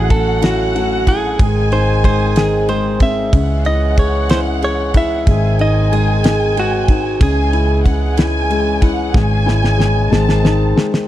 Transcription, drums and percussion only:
0.10 kick, ride
0.42 snare, ride
0.76 ride
1.07 kick, ride
1.39 kick, ride
1.72 ride
2.04 kick, ride
2.36 snare, ride
2.69 ride
3.00 kick, ride
3.33 kick, ride
3.65 ride
3.97 kick, ride
4.29 snare, ride
4.62 ride
4.94 kick, ride
5.27 kick, ride
5.59 ride
5.93 ride
6.24 snare, ride
6.57 ride
6.88 kick, ride
7.21 kick, ride
7.53 ride
7.86 kick, ride
8.17 snare, ride
8.51 ride
8.82 kick, ride
9.14 kick, snare
9.48 snare
9.64 snare
9.80 snare
10.13 snare
10.29 snare
10.45 snare
10.78 snare
10.94 snare

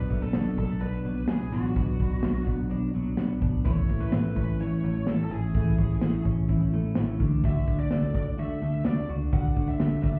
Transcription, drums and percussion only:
0.10 kick, closed hi-hat
0.33 snare, closed hi-hat
0.57 kick, closed hi-hat
0.80 closed hi-hat
1.05 closed hi-hat
1.28 snare, closed hi-hat
1.52 closed hi-hat
1.76 kick, closed hi-hat
1.99 kick, closed hi-hat
2.23 snare, closed hi-hat
2.47 kick, closed hi-hat
2.70 closed hi-hat
2.94 closed hi-hat
3.17 snare, closed hi-hat
3.42 kick, closed hi-hat
3.65 kick, closed hi-hat
3.89 kick, closed hi-hat
4.12 snare, closed hi-hat
4.36 kick, closed hi-hat
4.60 closed hi-hat
4.84 closed hi-hat
5.07 snare, closed hi-hat
5.31 closed hi-hat
5.55 kick, closed hi-hat
5.78 kick, closed hi-hat
6.01 snare, closed hi-hat
6.25 kick, closed hi-hat
6.48 kick, closed hi-hat
6.73 closed hi-hat
6.95 snare, closed hi-hat
7.20 kick, open hi-hat
7.44 kick, closed hi-hat
7.67 kick, closed hi-hat
7.91 snare, closed hi-hat
8.15 kick, closed hi-hat
8.38 closed hi-hat
8.62 closed hi-hat
8.85 snare, closed hi-hat
9.09 closed hi-hat
9.33 kick, closed hi-hat
9.56 kick, closed hi-hat
9.80 snare, closed hi-hat
10.04 kick, closed hi-hat

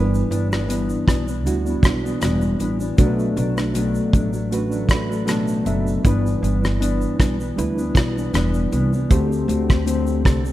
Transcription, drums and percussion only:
0.14 shaker
0.32 closed hi-hat, shaker
0.52 cross-stick, shaker
0.70 closed hi-hat, shaker
0.90 shaker
1.08 kick, cross-stick, closed hi-hat, shaker
1.28 shaker
1.47 closed hi-hat, shaker
1.67 shaker
1.83 kick, cross-stick, closed hi-hat, shaker
2.06 shaker
2.22 cross-stick, closed hi-hat, shaker
2.41 shaker
2.60 closed hi-hat, shaker
2.80 shaker
2.98 kick, closed hi-hat, shaker
3.19 shaker
3.37 closed hi-hat, shaker
3.57 cross-stick, shaker
3.75 closed hi-hat, shaker
3.95 shaker
4.13 kick, closed hi-hat, shaker
4.33 shaker
4.53 closed hi-hat, shaker
4.72 shaker
4.89 kick, cross-stick, closed hi-hat, shaker
5.12 shaker
5.28 cross-stick, closed hi-hat, shaker
5.48 shaker
5.66 closed hi-hat, shaker
5.87 shaker
6.05 kick, closed hi-hat, shaker
6.26 shaker
6.44 closed hi-hat, shaker
6.64 cross-stick, shaker
6.82 closed hi-hat, shaker
7.01 shaker
7.20 kick, cross-stick, closed hi-hat, shaker
7.40 shaker
7.59 closed hi-hat, shaker
7.78 shaker
7.95 kick, cross-stick, closed hi-hat, shaker
8.18 shaker
8.34 cross-stick, closed hi-hat, shaker
8.54 shaker
8.73 closed hi-hat, shaker
8.93 shaker
9.11 kick, closed hi-hat, shaker
9.32 shaker
9.49 closed hi-hat, shaker
9.70 kick, cross-stick, shaker
9.87 closed hi-hat, shaker
10.07 shaker
10.25 kick, cross-stick, closed hi-hat, shaker
10.45 shaker

